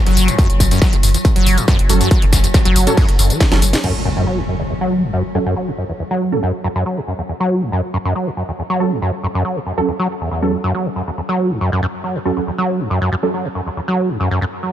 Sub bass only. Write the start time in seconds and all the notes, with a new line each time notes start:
0.07 F#1
0.17 F#1
0.50 F#1
0.60 F#1
0.93 F#1
1.03 F#1
1.36 F#1
1.46 F#1
1.79 F#1
1.90 F#1
2.22 F#1
2.33 F#1
2.66 F#1
2.76 F#1
3.09 F#1
3.19 F#1
3.52 F#1
3.62 F#1